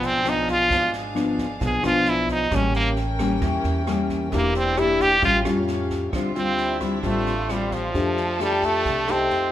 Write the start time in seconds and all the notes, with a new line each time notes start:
Already playing: G#2 F3 B3 D4 G#4 F5
0.02 B1 C4, snare
0.25 F3 B3 D4, cross-stick, snare
0.29 D#4
0.48 F4, kick, snare
0.69 G#1 G#2, kick, snare
0.93 snare
1.15 F3 B3 D4, cross-stick, snare
1.39 kick, snare
1.60 B1 G#2 F3 B3 D4 G#4, kick, snare
1.83 B1 F3 B3 D4 F4, cross-stick, snare
2.06 E4, snare
2.29 D#4, kick, snare
2.51 A1 A2 G3 A#3 C#4 A#4 G5, kick, cross-stick, snare
2.55 C#4
2.74 A#3, snare
2.97 snare
3.19 G3 A#3 C#4, kick, cross-stick, snare
3.42 E2 E3, kick, snare
3.64 E2, snare
3.87 G3 A#3 C#4, cross-stick, snare
4.10 kick, snare
4.32 E1 E3 A#3 D4 G4 E5, kick, snare
4.55 C4, snare
4.77 A#3 D4 E4 G4, cross-stick, snare
5.00 G4, kick, snare
5.22 A1 A2 G3 C#4 F4 F5, kick, snare
5.45 F2 G3 C#4 F4, cross-stick, snare
5.68 snare
5.90 kick, snare
6.13 D2 D3 G3 C4 D4 F4 G4 E5, kick, cross-stick, snare
6.36 G3 C4 F4, snare
6.57 E4, snare
6.80 G3 C4 F4, kick, cross-stick, snare
7.03 A1 A2 G3 C4 F4, kick, snare
7.07 A3
7.27 snare
7.49 G3 C4 F4, cross-stick, snare
7.72 F3, kick, snare
7.94 F2 F3 A3 D4 G4 A4 D5, kick, snare
8.17 snare
8.40 G3 A3 D4 G4, cross-stick, snare
8.63 A3, kick, snare
8.85 C2 C3, kick, snare
9.08 A3 C4 D#4 G4, cross-stick, snare
9.30 F2 F4 G4 D#5, snare